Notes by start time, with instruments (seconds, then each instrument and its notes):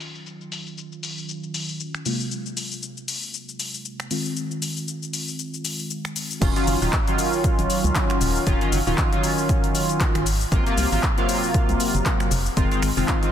Already playing: analog polysynth D#3 F#3 C#4 F4
0.00 open hi-hat, shaker
0.15 shaker
0.26 shaker
0.41 shaker
0.52 open hi-hat, shaker
0.67 shaker
0.78 shaker
0.92 shaker
1.03 open hi-hat, shaker
1.18 shaker
1.29 shaker
1.43 shaker
1.54 open hi-hat, shaker
1.69 shaker
1.80 shaker
1.95 finger snap, shaker
2.05 analog polysynth C3 F#3 G#3 A#3 F4, open hi-hat, shaker
2.20 shaker
2.31 shaker
2.46 shaker
2.57 open hi-hat, shaker
2.72 shaker
2.83 shaker
2.97 shaker
3.08 open hi-hat, shaker
3.23 shaker
3.34 shaker
3.49 shaker
3.60 open hi-hat, shaker
3.74 shaker
3.85 shaker
4.00 finger snap, shaker
4.11 analog polysynth D#3 G#3 C4 F4, open hi-hat, shaker
4.26 shaker
4.37 shaker
4.51 shaker
4.62 open hi-hat, shaker
4.77 shaker
4.88 shaker
5.03 shaker
5.13 open hi-hat, shaker
5.28 shaker
5.39 shaker
5.54 shaker
5.65 open hi-hat, shaker
5.79 shaker
5.91 shaker
6.05 finger snap, shaker
6.16 open hi-hat, shaker
6.31 shaker
6.42 fm bass D#1, analog polysynth D#3 F#3 C#4 F4, kick, closed hi-hat, crash, shaker
6.56 analog polysynth D#3 F#3 C#4 F4, closed hi-hat, shaker
6.67 fm bass F#1, open hi-hat, shaker
6.82 fm bass D#1, analog polysynth D#3 F#3 C#4 F4, shaker
6.93 kick, clap, closed hi-hat, shaker
7.07 analog polysynth D#3 F#3 C#4 F4, closed hi-hat, shaker
7.19 open hi-hat, shaker
7.33 shaker
7.44 kick, closed hi-hat, shaker
7.59 fm bass G#1, closed hi-hat, shaker
7.70 open hi-hat, shaker
7.84 fm bass C#2, closed hi-hat, shaker
7.95 kick, clap, closed hi-hat, shaker
8.10 finger snap, closed hi-hat, shaker
8.21 fm bass D#1, open hi-hat, shaker
8.36 shaker
8.47 fm bass D#1, analog polysynth D#3 F#3 C#4 F4, kick, closed hi-hat, shaker
8.61 analog polysynth D#3 F#3 C#4 F4, closed hi-hat, shaker
8.72 fm bass F#1, open hi-hat, shaker
8.87 fm bass D#1, analog polysynth D#3 F#3 C#4 F4, shaker
8.98 kick, clap, closed hi-hat, shaker
9.12 analog polysynth D#3 F#3 C#4 F4, closed hi-hat, shaker
9.24 open hi-hat, shaker
9.38 shaker
9.49 kick, closed hi-hat, shaker
9.64 closed hi-hat, shaker
9.75 open hi-hat, shaker
9.89 closed hi-hat, shaker
10.00 kick, clap, closed hi-hat, shaker
10.15 fm bass G#1, finger snap, closed hi-hat, shaker
10.26 open hi-hat, shaker
10.41 shaker
10.52 fm bass G#1, analog polysynth C3 F#3 A#3 F4, kick, closed hi-hat, shaker
10.66 analog polysynth C3 F#3 A#3 F4, closed hi-hat, shaker
10.78 fm bass C2, open hi-hat, shaker
10.92 fm bass G#1, analog polysynth C3 F#3 A#3 F4, shaker
11.03 kick, clap, closed hi-hat, shaker
11.18 analog polysynth C3 F#3 A#3 F4, closed hi-hat, shaker
11.29 open hi-hat, shaker
11.43 shaker
11.54 kick, closed hi-hat, shaker
11.69 fm bass C2, closed hi-hat, shaker
11.80 open hi-hat, shaker
11.95 fm bass F#1, closed hi-hat, shaker
12.06 kick, clap, closed hi-hat, shaker
12.20 finger snap, closed hi-hat, shaker
12.31 fm bass F1, open hi-hat, shaker
12.46 shaker
12.57 fm bass F1, analog polysynth D#3 G#3 C4 F4, kick, closed hi-hat, shaker
12.71 analog polysynth D#3 G#3 C4 F4, closed hi-hat, shaker
12.82 fm bass G#1, finger snap, open hi-hat, shaker
12.97 fm bass F1, analog polysynth D#3 G#3 C4 F4, shaker
13.08 kick, clap, closed hi-hat, shaker
13.23 analog polysynth D#3 G#3 C4 F4, closed hi-hat, shaker